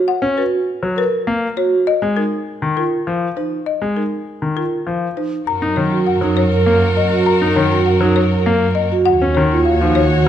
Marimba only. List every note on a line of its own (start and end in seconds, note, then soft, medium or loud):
0.08 0.26 F#5 medium
0.38 0.56 B4 medium
0.98 1.17 B4 medium
1.57 1.76 C#5 medium
1.87 2.06 D#5 medium
2.17 2.36 A#4 medium
2.77 2.96 A#4 medium
3.37 3.56 C5 medium
3.66 3.86 D#5 medium
3.97 4.16 A#4 medium
4.57 4.76 A#4 medium
5.17 5.36 C5 medium
5.47 5.66 A#5 medium
5.76 5.96 C#5 medium
6.07 6.26 F#5 medium
6.37 6.56 C#5 medium
6.97 7.16 D#5 medium
7.26 7.46 A#5 medium
7.56 7.76 C#5 medium
7.86 8.06 F#5 medium
8.16 8.36 C#5 medium
8.75 8.96 D#5 medium
9.06 9.26 F#5 medium
9.35 9.55 C#5 medium
9.65 9.86 F5 medium
9.95 10.16 C#5 medium